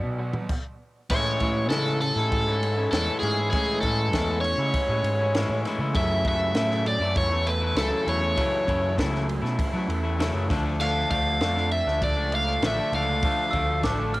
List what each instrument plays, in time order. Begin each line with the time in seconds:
Already playing: clean electric guitar B2 F#3, overdriven electric guitar B2 F#3 B3 F#4 D5
0.03 picked electric bass B2
0.19 clean electric guitar B2 F#3, overdriven electric guitar F#4
0.33 floor tom, mid tom
0.49 kick, crash
1.09 picked electric bass A2, clean electric guitar A2 E3 G#3 C#4 E4, overdriven electric guitar C#5, kick, crash
1.40 picked electric bass A2, clean electric guitar E3 G#3 C#4 E4, kick, ride
1.70 clean electric guitar A2 E3 G#3 C#4 E4, picked electric bass C#3, overdriven electric guitar A4, snare, ride
1.87 clean electric guitar G#3 C#4 E4, snare
2.01 overdriven electric guitar C#4 A4, muted clean electric guitar stroke, ride
2.16 picked electric bass A2, clean electric guitar G#3 C#4 E4, snare
2.32 overdriven electric guitar E3, kick, ride
2.46 picked electric bass G#2, clean electric guitar G#3 C#4 E4
2.63 ride
2.77 clean electric guitar G#3 C#4 E4
2.91 picked electric bass E2, clean electric guitar A2 E3 G#3 C#4 E4, overdriven electric guitar A4, snare, ride
3.09 clean electric guitar G#3 C#4 E4
3.20 picked electric bass G#2, clean electric guitar E3, overdriven electric guitar G#4, ride
3.24 clean electric guitar G#3 C#4 E4
3.39 clean electric guitar G#3 C#4 E4
3.50 clean electric guitar A2 E3 G#3 C#4, overdriven electric guitar G#4, kick, ride
3.55 clean electric guitar E4
3.81 picked electric bass A2, clean electric guitar E3 G#3, overdriven electric guitar A4, kick, ride
3.86 clean electric guitar C#4 E4
4.13 picked electric bass E2, clean electric guitar A2 E3 G#3 C#4 E4, kick, snare, ride
4.29 clean electric guitar G#3 C#4 E4
4.41 overdriven electric guitar C#4 C#5, muted clean electric guitar stroke, ride
4.58 picked electric bass C#3, clean electric guitar G#3 C#4 E4
4.74 overdriven electric guitar E3, kick, ride
4.89 picked electric bass A2, clean electric guitar G#3 C#4 E4
5.04 picked electric bass G#2, ride
5.20 clean electric guitar G#3 C#4 E4
5.35 clean electric guitar A2 E3 G#3 C#4 E4, snare, ride
5.49 picked electric bass A2, clean electric guitar G#3 C#4 E4
5.65 clean electric guitar E3 G#3 C#4 E4, overdriven electric guitar A3, snare, ride
5.79 picked electric bass C#3, clean electric guitar G#3 C#4 E4
5.94 picked electric bass F#2, clean electric guitar F#2 C#3 E3 A3 E4, overdriven electric guitar E5, kick, ride
6.25 picked electric bass F#2, clean electric guitar C#3 E3 A3 E4, overdriven electric guitar E5, kick, ride
6.55 clean electric guitar F#2 C#3 E3 A3 E4, picked electric bass A2, snare, ride
6.71 clean electric guitar E3 A3 E4, snare
6.86 overdriven electric guitar C#4 D5, muted clean electric guitar stroke, ride
7.00 picked electric bass F#2, clean electric guitar E3 A3 E4
7.16 overdriven electric guitar E3 C#5, kick, ride
7.31 picked electric bass E2, clean electric guitar E3 A3 E4
7.47 overdriven electric guitar A3 B4, ride
7.62 clean electric guitar E3 A3 E4
7.75 picked electric bass C#2, clean electric guitar F#2 C#3 E3 A3 E4, overdriven electric guitar A4, snare, ride
7.91 clean electric guitar E3 A3 E4
8.06 picked electric bass E2, clean electric guitar C#3 E3 A3 E4, overdriven electric guitar C#5, ride
8.21 clean electric guitar E3 A3 E4
8.36 clean electric guitar F#2 C#3 E3 A3 E4, kick, ride
8.67 picked electric bass F#2, clean electric guitar C#3 E3 A3 E4, kick, ride
8.98 picked electric bass C#2, clean electric guitar F#2 C#3 E3 A3 E4, kick, snare, ride
9.12 clean electric guitar E3 A3 E4, snare
9.28 overdriven electric guitar C#4, muted clean electric guitar stroke, ride
9.42 picked electric bass B2, clean electric guitar E3 A3 E4, snare
9.59 overdriven electric guitar E3, kick, ride
9.73 clean electric guitar E3 A3 E4, picked electric bass F#3
9.88 picked electric bass E2, overdriven electric guitar A3, ride
10.03 clean electric guitar E3 A3 E4
10.18 clean electric guitar F#2 C#3 E3 A3 E4, snare, ride
10.33 picked electric bass F#2, clean electric guitar E3 A3 E4
10.49 picked electric bass D2, clean electric guitar D3 F3 A3 D4, kick, snare, ride
10.64 clean electric guitar F3 A3 D4
10.80 clean electric guitar D3 F3 A3 D4, overdriven electric guitar F5, crash
11.10 picked electric bass D2, clean electric guitar D3 F3 A3 D4, overdriven electric guitar F5, kick, ride
11.41 picked electric bass F2, clean electric guitar D3 F3 A3 D4, snare, ride
11.56 clean electric guitar F3 A3 D4, snare
11.72 overdriven electric guitar D4 E5, muted clean electric guitar stroke, ride
11.86 picked electric bass D2, clean electric guitar F3 A3 D4, snare
12.02 overdriven electric guitar D3 D5, kick, ride
12.17 picked electric bass C#2, clean electric guitar F3 A3 D4
12.32 overdriven electric guitar A3 F5, ride
12.47 clean electric guitar F3 A3 D4
12.62 picked electric bass A1, clean electric guitar D3 F3 A3 D4, snare, ride
12.66 overdriven electric guitar E5
12.78 clean electric guitar F3 A3 D4
12.92 picked electric bass C#2, clean electric guitar D3 F3 A3 D4, overdriven electric guitar F5, ride
13.09 clean electric guitar F3 A3 D4
13.23 clean electric guitar D3 F3 A3 D4, kick, ride
13.51 picked electric bass D2, clean electric guitar D3 F3 A3, glockenspiel E6, kick, ride
13.56 clean electric guitar D4
13.83 picked electric bass A1, clean electric guitar D3 F3 A3 D4, glockenspiel D6, kick, snare, ride
13.99 clean electric guitar F3 A3 D4
14.14 overdriven electric guitar D4, glockenspiel F6, muted clean electric guitar stroke, ride